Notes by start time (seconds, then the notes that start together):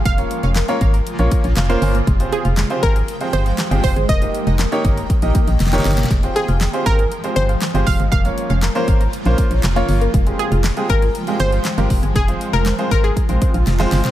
0.05 F1 C#3 A#3 F4 F5, kick, closed hi-hat
0.18 A#3 C#4 F4 A#4 C#5, closed hi-hat
0.31 closed hi-hat
0.43 F1 C#4, closed hi-hat
0.56 A#3, snare, clap, closed hi-hat
0.68 A#3 C#4 F4 A#4 C#5, closed hi-hat
0.81 G#1 A#4, kick, closed hi-hat
0.94 A#4, closed hi-hat
1.07 closed hi-hat
1.19 A#1 A#3 C#4 F4 A#4 C#5, closed hi-hat
1.31 A#3, kick, closed hi-hat
1.44 A#1 C#4, closed hi-hat
1.57 F1 F5, snare, clap, closed hi-hat
1.69 A#3 C#4 F4 A#4 C5, closed hi-hat
1.82 G1 G#5, open hi-hat
1.95 A#3, closed hi-hat
2.07 F1 F3 G#3 G5, kick, closed hi-hat
2.20 C4 F4 G4 G#4 C5, closed hi-hat
2.32 G#4, closed hi-hat
2.45 F1 F4, closed hi-hat
2.57 G#3, snare, clap, closed hi-hat
2.70 C4 F4 G4 G#4 C5, closed hi-hat
2.83 G#1 G#4 A#4, kick, closed hi-hat
2.96 G#4, closed hi-hat
3.08 closed hi-hat
3.21 C4 F4 G4 G#4 C5, closed hi-hat
3.33 G1 G#3 C5, closed hi-hat
3.46 F4, closed hi-hat
3.58 snare, clap, closed hi-hat
3.71 G1 C4 F4 G4 G#4 C5, closed hi-hat
3.84 F1 C5, kick, open hi-hat
3.96 G1 G#3, closed hi-hat
4.09 F1 D#3 A#3 D#5 G5, kick, closed hi-hat
4.22 A#3 D#4 G4 A#4 D#5, closed hi-hat
4.35 closed hi-hat
4.47 F1 D#4, closed hi-hat
4.59 A#3, snare, clap, closed hi-hat
4.72 A#3 D#4 G4 A#4 C#5, closed hi-hat
4.85 G1 A#4, kick, closed hi-hat
4.97 A#4, closed hi-hat
5.10 kick, closed hi-hat
5.22 A#1 A#3 D#4 G4 A#4 D#5, closed hi-hat
5.35 A#3, kick, closed hi-hat
5.47 A#1 D#4, closed hi-hat
5.60 F1, snare, closed hi-hat
5.67 snare
5.73 A#3 D#4 G4 A#4 C#5, snare, closed hi-hat
5.79 snare
5.85 G1, snare, open hi-hat
5.92 snare
5.98 A#3, snare, closed hi-hat
6.04 snare
6.11 F1 F3 G#3, kick, closed hi-hat
6.23 C4 F4 G4 G#4 C5, closed hi-hat
6.36 G#4, closed hi-hat
6.48 F1 F4, closed hi-hat
6.61 G#3, snare, clap, closed hi-hat
6.73 C4 F4 G4 G#4 C5, closed hi-hat
6.86 G#1 G#4 A#4, kick, closed hi-hat
6.99 G#4, closed hi-hat
7.12 closed hi-hat
7.24 C4 F4 G4 G#4 C5, closed hi-hat
7.36 G1 G#3 C5, closed hi-hat
7.49 F4, closed hi-hat
7.62 snare, clap, closed hi-hat
7.74 G1 C4 F4 G4 G#4 C5, closed hi-hat
7.87 F1 F5, kick, open hi-hat
8.00 G1 G#3, closed hi-hat
8.12 F1 C#3 A#3 F4 F5, kick, closed hi-hat
8.25 A#3 C#4 F4 A#4 C#5, closed hi-hat
8.38 closed hi-hat
8.50 F1 C#4, closed hi-hat
8.63 A#3, snare, clap, closed hi-hat
8.75 A#3 C#4 F4 A#4 C5, closed hi-hat
8.88 G#1 A#4, kick, closed hi-hat
9.00 A#4, closed hi-hat
9.13 closed hi-hat
9.25 A#1 A#3 C#4 F4 A#4 C5, closed hi-hat
9.38 A#3, kick, closed hi-hat
9.51 A#1 C#4, closed hi-hat
9.63 F1, snare, clap, closed hi-hat
9.76 A#3 C#4 F4 A#4 C#5, closed hi-hat
9.89 G1, open hi-hat
10.01 A#3, closed hi-hat
10.14 F1 F3 G#3 G5, kick, closed hi-hat
10.26 G#3 C4 F4 G4 G#4, closed hi-hat
10.39 G#4, closed hi-hat
10.52 F1 F4, closed hi-hat
10.64 G#3, snare, clap, closed hi-hat
10.77 G#3 C4 F4 G4 G#4, closed hi-hat
10.90 G#1 G#4 A#4, kick, closed hi-hat
11.02 G#4, closed hi-hat
11.15 closed hi-hat
11.27 G#3 C4 F4 G4 G#4, closed hi-hat
11.40 G1 G#3 C5, closed hi-hat
11.52 F4, closed hi-hat
11.65 snare, clap, closed hi-hat
11.78 G1 G#3 C4 F4 G4 A#4, closed hi-hat
11.90 F1, kick, open hi-hat
12.03 G1 G#3, closed hi-hat
12.16 F1 C3 C4 F4 G#4, kick, closed hi-hat
12.28 G#3 C4 F4 G#4 C5, closed hi-hat
12.41 closed hi-hat
12.53 F1 F4 A#4, closed hi-hat
12.66 C4, snare, clap, closed hi-hat
12.78 G#3 C4 F4 G#4 C5, closed hi-hat
12.91 G#1 A#4 C5, kick, closed hi-hat
13.04 G#4 C5, closed hi-hat
13.17 kick, closed hi-hat
13.29 A#1 G#3 C4 F4 G#4 C5, closed hi-hat
13.42 C4, kick, closed hi-hat
13.54 A#1 F4, closed hi-hat
13.67 F1, snare, closed hi-hat
13.79 G#3 C4 F4 G#4 C5, snare, closed hi-hat
13.92 G1, snare, open hi-hat
14.05 C4, snare, closed hi-hat